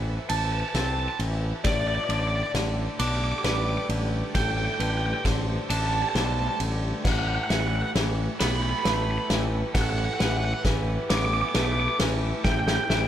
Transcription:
Already playing: A1 A2 E3 C4 A4 B4 C5 E5
0.29 A1 A5, ride
0.37 A5
0.45 A5
0.52 A5
0.60 A5
0.69 A5
0.74 C2 C4 C5 A5, snare, ride
0.84 A5
0.93 A5
1.00 A5
1.08 A5
1.19 A1 E3, ride
1.64 A1 A2 A3 G4 D5, kick, snare, ride
1.72 D5
1.81 D5
1.88 D5
1.95 D5
2.04 D5
2.09 A1 D3 D5, ride
2.19 D5
2.28 D5
2.36 D5
2.43 D5
2.54 A1 D3, snare, ride
2.99 B1 D4 D6, ride
3.08 D6
3.15 D6
3.24 D6
3.32 D6
3.38 D6
3.44 A1 G3 B4 D6, snare, ride
3.54 D6
3.63 D6
3.69 D6
3.77 D6
3.89 A1 D3, ride
4.34 A1 A2 G4 A4 G5, kick, snare, ride
4.43 G5
4.51 G5
4.58 G5
4.65 G5
4.74 G5
4.79 A1 D3 B4 G5, ride
4.90 G5
4.98 G5
5.06 G5
5.14 G5
5.25 A1 D3 C5, kick, snare, ride
5.70 A1 D4 A5, ride
5.77 A5
5.87 A5
5.94 A5
6.02 A5
6.09 A5
6.14 B1 G3 C5 A5, snare, ride
6.25 A5
6.33 A5
6.39 A5
6.48 A5
6.60 A1 D3, ride
7.04 A1 A2 E4 F#5, kick, snare, crash
7.12 F#5
7.19 F#5
7.28 F#5
7.35 F#5
7.44 F#5
7.50 A1 E3 E5 F#5, snare, ride
7.60 F#5
7.67 F#5
7.76 F#5
7.82 F#5
7.95 A1 E3, snare, ride
8.40 B1 B3 B5, snare, ride
8.47 B5
8.56 B5
8.62 B5
8.70 B5
8.79 B5
8.84 A1 A3 B4 B5, snare, ride
8.94 B5
9.03 B5
9.11 B5
9.18 B5
9.30 A1 E3, snare, ride
9.74 A1 A2 A4 F#5, kick, snare, ride
9.82 F#5
9.90 F#5
9.98 F#5
10.05 F#5
10.14 F#5
10.19 A1 E3 B4 F#5, snare, ride
10.30 F#5
10.37 F#5
10.45 F#5
10.54 F#5
10.64 A1 E3 B4, kick, snare, ride
11.10 A1 B3 D6, snare, ride
11.18 D6
11.25 D6
11.34 D6
11.41 D6
11.49 D6
11.55 B1 A3 B4 D6, snare, ride
11.65 D6
11.72 D6
11.80 D6
11.88 D6
12.00 A1 E3, snare, ride
12.44 A1 A2 C4 G4 G5, kick, snare
12.52 G5
12.59 G5
12.68 G5, snare
12.76 G5
12.84 G5
12.89 A1 E3 E5 G5, snare
12.99 G5

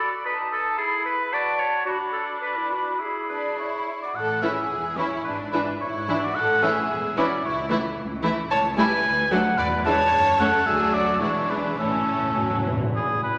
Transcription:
Already playing: D5 B5
0.00 A4
0.25 D#4 B4 A5
0.51 A4
0.78 E4 G#4 B5
1.05 B4
1.32 F#4 D5 A5
1.59 C#5
1.85 D4 F#4 B5
2.12 A4
2.41 B4 B5
2.57 E4
2.71 F#4
2.99 E4 G#4 B5
3.29 D4 B4
3.58 E4 C#5
4.02 F#4 D5
4.15 A1 A2 A4 F#5
4.42 E3 C#4 E4 G#4 E5
4.70 E1 E2
4.97 E3 C#4 E4 C#5
5.24 G#1 G#2 D4 B4
5.52 E3 D4 E4 B4
5.80 G#1 G#2 E4 C#5
6.08 E3 D4 E4
6.23 F#4 D5
6.35 A1 A2 A4 F#5
6.62 E3 C#4 E4 G#4 E5
6.90 E1 E2
7.17 E3 C#4 E4 F#4 D5
7.44 C#2 E4 C#5
7.70 E3 A3 E4
7.97 C#2
8.23 E3 A3 E4
8.50 C#2 C#5 A5
8.77 G3 A3 E4 B4 G#5
9.04 D2
9.31 F#3 A3 D4 A4 F#5
9.58 E1 E2 B4 D5
9.85 E3 G#3 D4 C#5 A5
10.13 F#1 F#2
10.39 A3 C#4 A4 F#5
10.66 D2 F#3 A3 D4 G#4 E5
10.94 F#4 D5
11.21 E1 E2 E3 G#3 D4 E4 C#5
11.50 D4 B4
11.78 A1 A2 E3 A3 C#4 A4
11.87 A2
11.95 A2
12.03 A2
12.10 A2
12.18 A2
12.26 A2
12.34 A2 F#3
12.41 A2
12.50 A2
12.57 A2
12.65 A2 E3
12.72 A2
12.81 A2
12.94 E4 G#4 B5
13.23 B4

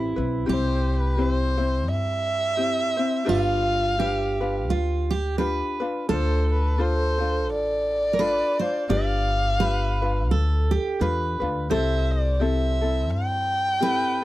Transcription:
Already playing: A1 C4 E4 G4 B4
0.16 B1 C4 E4 B4
0.46 C2 C4 E4 G4
0.51 C5
0.92 B4
1.17 C4 E4 G4 C5
1.57 C4 E4 C5
1.89 G2 E5
2.57 C4 E4 G4 C5
2.97 C4 E4 C5
3.25 G1 D4 F4 G4 B4
3.29 F4 F5
3.99 D4 F4 G4 B4
4.40 D4 F4 B4
4.69 D2 F4
5.11 G4
5.38 D4 F4 G4 B4
5.80 D4 F4 B4
6.09 D2 D4 F4 A4 C5
6.53 B4
6.78 D4 F4 A4 C5
7.18 D4 F4 C5
7.49 A1 D5
8.13 A#4
8.19 D4 F4 A4 B4
8.59 D4 F4 C5
8.89 G1 D4 F4 G4 B4 D5 F5
9.60 D4 F4 G4 B4
10.02 D4 F4 B4
10.31 D2 A4
10.71 G4
11.00 E2 D4 F4 G4 B4
11.40 D2 D4 F4 B4
11.70 C2 C4 E4 G4 A4 C5 E5
12.11 D5
12.40 C4 E4 G4 A4 E5
12.81 C4 E4 A4
13.10 G2 G5
13.80 C4 E4 G4 A4 B4

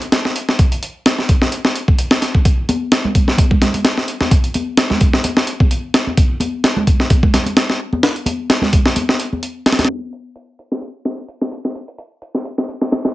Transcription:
0.02 closed hi-hat
0.12 snare, closed hi-hat
0.25 snare
0.36 closed hi-hat
0.49 snare
0.59 kick, closed hi-hat
0.72 closed hi-hat
0.83 closed hi-hat
1.06 snare, closed hi-hat
1.19 snare
1.29 kick, closed hi-hat
1.42 snare
1.52 closed hi-hat
1.65 snare
1.76 closed hi-hat
1.88 kick
1.99 closed hi-hat
2.11 snare
2.22 snare, closed hi-hat
2.35 kick
2.45 kick, closed hi-hat
2.69 closed hi-hat, high conga
2.92 snare, closed hi-hat
3.04 high conga, low conga
3.15 kick, closed hi-hat
3.28 snare
3.38 kick, closed hi-hat, high conga
3.51 kick, low conga
3.61 snare, closed hi-hat, low conga
3.74 closed hi-hat, high conga
3.85 snare, closed hi-hat
3.98 snare
4.08 closed hi-hat
4.21 snare, high conga
4.31 kick, closed hi-hat
4.44 closed hi-hat
4.54 closed hi-hat, high conga
4.77 snare, closed hi-hat
4.90 snare, high conga, low conga
5.01 kick, closed hi-hat
5.13 snare
5.24 closed hi-hat, high conga
5.37 snare
5.47 closed hi-hat
5.60 kick, high conga
5.71 closed hi-hat
5.94 snare, closed hi-hat
6.07 high conga
6.17 kick, closed hi-hat
6.40 closed hi-hat, high conga
6.64 snare, closed hi-hat
6.76 high conga, low conga
6.87 kick, closed hi-hat
7.00 snare
7.10 kick, closed hi-hat, high conga
7.23 kick, low conga
7.34 snare, closed hi-hat, low conga
7.46 closed hi-hat, high conga
7.57 snare, closed hi-hat
7.70 snare
7.93 high conga
8.03 snare, closed hi-hat
8.16 closed hi-hat
8.26 closed hi-hat, high conga
8.50 snare, closed hi-hat
8.61 snare, high conga, low conga
8.73 kick, closed hi-hat
8.86 snare
8.96 closed hi-hat, high conga
9.09 snare
9.20 closed hi-hat
9.33 high conga
9.43 closed hi-hat
9.66 snare, closed hi-hat
9.72 snare, closed hi-hat
9.79 snare, closed hi-hat, high conga
9.85 snare, closed hi-hat
9.89 closed hi-hat
10.13 closed hi-hat
10.36 closed hi-hat
10.59 closed hi-hat
10.72 snare
10.82 closed hi-hat
11.05 snare, closed hi-hat
11.18 closed hi-hat
11.28 closed hi-hat
11.41 snare
11.52 closed hi-hat
11.65 snare
11.75 closed hi-hat
11.88 closed hi-hat
11.98 closed hi-hat
12.22 closed hi-hat
12.35 snare
12.45 closed hi-hat
12.58 snare
12.69 closed hi-hat
12.81 snare
12.92 snare, closed hi-hat
13.05 snare, closed hi-hat

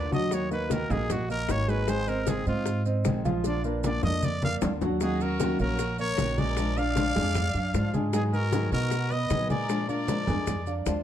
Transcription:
Already playing: D#2 D3 A#3 D4 D5
0.11 F#3 A#3 D4 F4 F#4 D#5 F#5, high conga, maracas
0.31 D#3 A#3 D#4 F#4 C#5, high bongo, high conga, maracas
0.51 A#3 D#4 F#4 A#4 B4 D#5, high bongo, high conga, maracas
0.70 D#3 A#3 D#4 F#4 A#4, high bongo, high conga, maracas
0.90 A#1 A#3 D#4 F#4 G#4 A#4 D#5, high bongo, high conga, low conga, maracas
1.09 F#4, muted nylon-string guitar stroke, high bongo, high conga, low conga, maracas
1.29 A#3 A#4 D#5, high bongo, high conga, maracas
1.48 G#1 D#3 A#3 D#4 F#4 C#5, high bongo, low bongo, high conga, maracas
1.68 G#3 A#3 D#4 F#4 G#4 B4 G#5, maracas
1.87 D#3 G#3 C4 G#4 C5 G#5, high bongo, high conga, maracas
2.07 G#3 C4 G#4 A#4 C5 D#5, high conga, maracas
2.27 D#3 G#3 C4 G#4, high bongo, high conga, maracas
2.46 G#2 G#3 C4 F4 G#4 C5 D#5, maracas
2.66 muted nylon-string guitar stroke, high bongo, high conga, maracas
2.85 C4 C5 D#5, high conga, maracas
3.05 A#1 D#3 G#3 C4 G#4, high bongo, low bongo, high conga, maracas
3.25 F3 G#3 C4 F4 G#4 F5, high conga, maracas
3.44 D3 A#3 D4 F4 D5, high bongo, high conga, maracas
3.64 A#3 D4 F4 A#4 B4 D5, high conga, maracas
3.84 D3 A#3 D4 F4 D5, high conga, maracas
4.03 F2 A#3 D4 F4 A#4 D5 D#5, low bongo, high conga, low conga, maracas
4.22 D5, muted nylon-string guitar stroke, high conga, maracas
4.42 A#3 A#4 D5 F5, high conga, maracas
4.61 D#2 D3 A#3 D4 F4, low bongo, low conga, maracas
4.81 F#3 A#3 D4 F4 F#4 F#5, low bongo, low conga, maracas
5.01 D#3 F#3 A#3 C#4 D#4 F#4 G#4 F#5, high bongo, high conga, maracas
5.21 A#3 C#4 F#4 A#4, high conga, maracas
5.40 D#3 F#3 A#3 C#4 F#4 F#5, high bongo, high conga, maracas
5.59 A#1 A#3 C#4 F#4 A#4 C#5, maracas
5.79 muted nylon-string guitar stroke, high bongo, high conga, maracas
5.99 A#3 A#4 C#5, high conga, maracas
6.18 A#1 D#3 A#3 C#4 F#4, high bongo, low bongo, high conga, maracas
6.38 G#3 A#3 C#4 F#4 G#4 A#4 D5 G#5, high conga, maracas
6.57 F3 G#3 D4 F4, high bongo, high conga, maracas
6.77 G#3 D4 F4 D5 F5, high bongo, high conga, maracas
6.96 F3 G#3 D4 F4, high bongo, high conga, maracas
7.15 F2 G#3 D4 F4 G#4 G#5, high bongo, high conga, low conga, maracas
7.35 muted nylon-string guitar stroke, high bongo, high conga, low conga, maracas
7.54 F#2 D4 D5 F5, high bongo, high conga, maracas
7.74 G#2 F3 G#3 D4 F4, high bongo, low bongo, high conga, maracas
7.94 G#3 D4 F4 G#4 G#5, high conga, maracas
8.13 D#3 F#3 G#3 B3 D#4 G#4 G#5, high bongo, high conga, maracas
8.33 B3 D#4 F#4 G#4 A#4, high conga, maracas
8.52 D#3 F#3 G#3 B3 D#4 G#4 G#5, high bongo, high conga, maracas
8.72 B2 B3 D#4 F#4 G#4 A#4 D#5, maracas
8.91 muted nylon-string guitar stroke, high bongo, high conga, maracas
9.11 B3 B4 D#5, high conga, maracas
9.30 A#2 D#3 F#3 B3 D#4 G#4, high bongo, low bongo, high conga, maracas
9.50 G#3 B3 D#4 G#4 A#4 D5 G#5, high conga, maracas
9.68 F3 G#3 D4 F4, high bongo, high conga, maracas
9.88 G#3 D4 F4 A#4 D5 F5, high bongo, high conga, maracas
10.07 F3 G#3 D4 F4, high bongo, high conga, maracas
10.27 F2 G#3 D4 F4 G#4 G#5, high bongo, high conga, low conga, maracas
10.47 muted nylon-string guitar stroke, high bongo, high conga, low conga, maracas
10.66 D4 D5 F5, high bongo, high conga, maracas
10.86 D#2 F3 G#3 D4 F4, high bongo, low bongo, high conga, maracas

